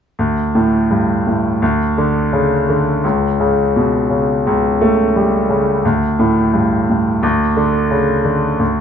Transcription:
0, 0, Header, 1, 2, 480
1, 0, Start_track
1, 0, Tempo, 714286
1, 120, Time_signature, 4, 2, 24, 8
1, 2996, Tempo, 691244
1, 6015, End_track
2, 0, Start_track
2, 0, Title_t, "Grand piano"
2, 0, Program_c, 0, 0
2, 126, Note_on_c, 0, 38, 36
2, 228, Control_c, 0, 64, 127
2, 369, Note_on_c, 0, 45, 42
2, 610, Note_on_c, 0, 43, 30
2, 755, Note_off_c, 0, 45, 0
2, 850, Note_off_c, 0, 43, 0
2, 852, Note_on_c, 0, 45, 26
2, 1065, Note_off_c, 0, 38, 0
2, 1089, Note_on_c, 0, 38, 42
2, 1090, Note_off_c, 0, 45, 0
2, 1102, Control_c, 0, 64, 0
2, 1206, Control_c, 0, 64, 127
2, 1330, Note_on_c, 0, 50, 38
2, 1564, Note_on_c, 0, 49, 31
2, 1706, Note_off_c, 0, 50, 0
2, 1801, Note_off_c, 0, 49, 0
2, 1810, Note_on_c, 0, 50, 30
2, 2014, Note_off_c, 0, 38, 0
2, 2044, Note_on_c, 0, 37, 38
2, 2045, Note_off_c, 0, 50, 0
2, 2053, Control_c, 0, 64, 0
2, 2183, Control_c, 0, 64, 127
2, 2285, Note_on_c, 0, 49, 32
2, 2527, Note_on_c, 0, 47, 30
2, 2666, Note_off_c, 0, 49, 0
2, 2756, Note_on_c, 0, 49, 25
2, 2763, Note_off_c, 0, 47, 0
2, 2971, Note_off_c, 0, 37, 0
2, 3001, Note_on_c, 0, 37, 39
2, 3140, Note_off_c, 0, 49, 0
2, 3242, Note_on_c, 0, 57, 42
2, 3482, Note_on_c, 0, 55, 29
2, 3624, Note_off_c, 0, 57, 0
2, 3717, Note_on_c, 0, 49, 27
2, 3721, Note_off_c, 0, 55, 0
2, 3935, Note_off_c, 0, 37, 0
2, 3960, Note_off_c, 0, 49, 0
2, 3962, Note_on_c, 0, 38, 39
2, 3973, Control_c, 0, 64, 0
2, 4069, Control_c, 0, 64, 127
2, 4200, Note_on_c, 0, 45, 48
2, 4440, Note_on_c, 0, 43, 29
2, 4587, Note_off_c, 0, 45, 0
2, 4684, Note_off_c, 0, 43, 0
2, 4687, Note_on_c, 0, 45, 28
2, 4899, Note_off_c, 0, 38, 0
2, 4919, Note_on_c, 0, 38, 47
2, 4927, Note_off_c, 0, 45, 0
2, 4937, Control_c, 0, 64, 0
2, 5037, Control_c, 0, 64, 127
2, 5155, Note_on_c, 0, 50, 39
2, 5392, Note_on_c, 0, 49, 32
2, 5537, Note_off_c, 0, 50, 0
2, 5626, Note_on_c, 0, 50, 34
2, 5633, Note_off_c, 0, 49, 0
2, 5844, Note_off_c, 0, 38, 0
2, 5867, Note_on_c, 0, 38, 38
2, 5870, Note_off_c, 0, 50, 0
2, 5888, Control_c, 0, 64, 0
2, 5994, Control_c, 0, 64, 127
2, 6015, Note_off_c, 0, 38, 0
2, 6015, End_track
0, 0, End_of_file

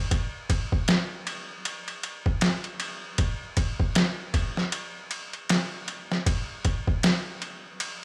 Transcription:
0, 0, Header, 1, 2, 480
1, 0, Start_track
1, 0, Tempo, 769231
1, 71, Time_signature, 4, 2, 24, 8
1, 5018, End_track
2, 0, Start_track
2, 0, Title_t, "Drums"
2, 70, Note_on_c, 9, 36, 99
2, 71, Note_on_c, 9, 51, 80
2, 133, Note_off_c, 9, 36, 0
2, 133, Note_off_c, 9, 51, 0
2, 310, Note_on_c, 9, 36, 90
2, 310, Note_on_c, 9, 51, 69
2, 372, Note_off_c, 9, 36, 0
2, 372, Note_off_c, 9, 51, 0
2, 451, Note_on_c, 9, 36, 92
2, 514, Note_off_c, 9, 36, 0
2, 548, Note_on_c, 9, 51, 83
2, 553, Note_on_c, 9, 38, 112
2, 610, Note_off_c, 9, 51, 0
2, 615, Note_off_c, 9, 38, 0
2, 791, Note_on_c, 9, 51, 58
2, 853, Note_off_c, 9, 51, 0
2, 1031, Note_on_c, 9, 51, 81
2, 1094, Note_off_c, 9, 51, 0
2, 1172, Note_on_c, 9, 51, 39
2, 1234, Note_off_c, 9, 51, 0
2, 1269, Note_on_c, 9, 51, 66
2, 1332, Note_off_c, 9, 51, 0
2, 1410, Note_on_c, 9, 36, 91
2, 1472, Note_off_c, 9, 36, 0
2, 1505, Note_on_c, 9, 51, 82
2, 1510, Note_on_c, 9, 38, 120
2, 1568, Note_off_c, 9, 51, 0
2, 1573, Note_off_c, 9, 38, 0
2, 1648, Note_on_c, 9, 51, 45
2, 1710, Note_off_c, 9, 51, 0
2, 1745, Note_on_c, 9, 51, 62
2, 1807, Note_off_c, 9, 51, 0
2, 1985, Note_on_c, 9, 51, 87
2, 1988, Note_on_c, 9, 36, 106
2, 2047, Note_off_c, 9, 51, 0
2, 2050, Note_off_c, 9, 36, 0
2, 2226, Note_on_c, 9, 51, 72
2, 2227, Note_on_c, 9, 36, 98
2, 2288, Note_off_c, 9, 51, 0
2, 2290, Note_off_c, 9, 36, 0
2, 2369, Note_on_c, 9, 36, 86
2, 2431, Note_off_c, 9, 36, 0
2, 2467, Note_on_c, 9, 51, 88
2, 2472, Note_on_c, 9, 38, 112
2, 2529, Note_off_c, 9, 51, 0
2, 2534, Note_off_c, 9, 38, 0
2, 2707, Note_on_c, 9, 51, 59
2, 2708, Note_on_c, 9, 36, 84
2, 2770, Note_off_c, 9, 36, 0
2, 2770, Note_off_c, 9, 51, 0
2, 2853, Note_on_c, 9, 38, 40
2, 2916, Note_off_c, 9, 38, 0
2, 2947, Note_on_c, 9, 51, 88
2, 3009, Note_off_c, 9, 51, 0
2, 3187, Note_on_c, 9, 51, 65
2, 3249, Note_off_c, 9, 51, 0
2, 3328, Note_on_c, 9, 51, 41
2, 3391, Note_off_c, 9, 51, 0
2, 3429, Note_on_c, 9, 51, 89
2, 3433, Note_on_c, 9, 38, 116
2, 3491, Note_off_c, 9, 51, 0
2, 3496, Note_off_c, 9, 38, 0
2, 3668, Note_on_c, 9, 51, 64
2, 3731, Note_off_c, 9, 51, 0
2, 3816, Note_on_c, 9, 38, 52
2, 3878, Note_off_c, 9, 38, 0
2, 3909, Note_on_c, 9, 36, 105
2, 3909, Note_on_c, 9, 51, 85
2, 3971, Note_off_c, 9, 36, 0
2, 3972, Note_off_c, 9, 51, 0
2, 4147, Note_on_c, 9, 51, 67
2, 4149, Note_on_c, 9, 36, 95
2, 4210, Note_off_c, 9, 51, 0
2, 4211, Note_off_c, 9, 36, 0
2, 4290, Note_on_c, 9, 36, 92
2, 4352, Note_off_c, 9, 36, 0
2, 4389, Note_on_c, 9, 51, 81
2, 4394, Note_on_c, 9, 38, 117
2, 4451, Note_off_c, 9, 51, 0
2, 4456, Note_off_c, 9, 38, 0
2, 4628, Note_on_c, 9, 51, 59
2, 4691, Note_off_c, 9, 51, 0
2, 4868, Note_on_c, 9, 51, 80
2, 4930, Note_off_c, 9, 51, 0
2, 5018, End_track
0, 0, End_of_file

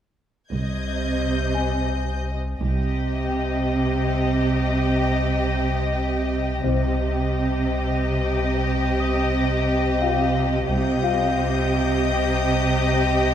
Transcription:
0, 0, Header, 1, 8, 480
1, 0, Start_track
1, 0, Key_signature, -3, "minor"
1, 0, Tempo, 687285
1, 370, Time_signature, 3, 2, 24, 8
1, 2772, Tempo, 672646
1, 9460, End_track
2, 0, Start_track
2, 0, Title_t, "Violin section"
2, 0, Program_c, 0, 48
2, 363, Note_on_c, 0, 91, 23
2, 365, Note_on_c, 0, 92, 22
2, 889, Note_off_c, 0, 91, 0
2, 889, Note_off_c, 0, 92, 0
2, 889, Note_on_c, 0, 91, 22
2, 1054, Note_off_c, 0, 91, 0
2, 7562, Note_on_c, 0, 91, 36
2, 7568, Note_on_c, 0, 87, 37
2, 9460, Note_off_c, 0, 87, 0
2, 9460, Note_off_c, 0, 91, 0
2, 9460, End_track
3, 0, Start_track
3, 0, Title_t, "Celesta"
3, 0, Program_c, 1, 8
3, 495, Control_c, 1, 64, 127
3, 1079, Note_on_c, 1, 80, 30
3, 1783, Note_off_c, 1, 80, 0
3, 1826, Control_c, 1, 64, 0
3, 1936, Control_c, 1, 64, 127
3, 2290, Note_on_c, 1, 79, 27
3, 3707, Note_off_c, 1, 79, 0
3, 4674, Note_on_c, 1, 60, 26
3, 4677, Note_on_c, 1, 72, 30
3, 6091, Note_off_c, 1, 60, 0
3, 6093, Note_off_c, 1, 72, 0
3, 6362, Note_on_c, 1, 87, 33
3, 7087, Note_on_c, 1, 77, 38
3, 7093, Note_on_c, 1, 65, 26
3, 7769, Note_off_c, 1, 87, 0
3, 7799, Note_off_c, 1, 65, 0
3, 7806, Note_off_c, 1, 77, 0
3, 7808, Note_on_c, 1, 65, 28
3, 7815, Note_on_c, 1, 77, 42
3, 9226, Note_off_c, 1, 65, 0
3, 9229, Note_off_c, 1, 77, 0
3, 9460, End_track
4, 0, Start_track
4, 0, Title_t, "Violin section"
4, 0, Program_c, 2, 48
4, 370, Note_on_c, 2, 75, 25
4, 1644, Note_off_c, 2, 75, 0
4, 9460, End_track
5, 0, Start_track
5, 0, Title_t, "Violin section"
5, 0, Program_c, 3, 48
5, 1803, Note_on_c, 3, 75, 31
5, 1807, Note_on_c, 3, 67, 30
5, 4657, Note_off_c, 3, 75, 0
5, 4659, Note_off_c, 3, 67, 0
5, 4691, Note_on_c, 3, 67, 34
5, 4696, Note_on_c, 3, 75, 33
5, 7533, Note_off_c, 3, 67, 0
5, 7535, Note_off_c, 3, 75, 0
5, 7560, Note_on_c, 3, 67, 46
5, 7564, Note_on_c, 3, 75, 41
5, 9460, Note_off_c, 3, 67, 0
5, 9460, Note_off_c, 3, 75, 0
5, 9460, End_track
6, 0, Start_track
6, 0, Title_t, "Cello section"
6, 0, Program_c, 4, 48
6, 371, Note_on_c, 4, 48, 27
6, 1644, Note_off_c, 4, 48, 0
6, 1820, Note_on_c, 4, 48, 31
6, 4666, Note_off_c, 4, 48, 0
6, 4692, Note_on_c, 4, 48, 33
6, 7533, Note_off_c, 4, 48, 0
6, 7564, Note_on_c, 4, 48, 48
6, 9460, Note_off_c, 4, 48, 0
6, 9460, End_track
7, 0, Start_track
7, 0, Title_t, "Double bass section"
7, 0, Program_c, 5, 48
7, 365, Note_on_c, 5, 36, 24
7, 816, Note_off_c, 5, 36, 0
7, 1812, Note_on_c, 5, 36, 29
7, 2265, Note_off_c, 5, 36, 0
7, 4691, Note_on_c, 5, 36, 32
7, 5143, Note_off_c, 5, 36, 0
7, 7565, Note_on_c, 5, 36, 44
7, 8016, Note_off_c, 5, 36, 0
7, 9460, End_track
8, 0, Start_track
8, 0, Title_t, "Sub bass"
8, 0, Program_c, 6, 38
8, 363, Note_on_c, 6, 36, 46
8, 1782, Note_off_c, 6, 36, 0
8, 1803, Note_on_c, 6, 36, 55
8, 4658, Note_off_c, 6, 36, 0
8, 4696, Note_on_c, 6, 36, 55
8, 7535, Note_off_c, 6, 36, 0
8, 7564, Note_on_c, 6, 36, 53
8, 9460, Note_off_c, 6, 36, 0
8, 9460, End_track
0, 0, End_of_file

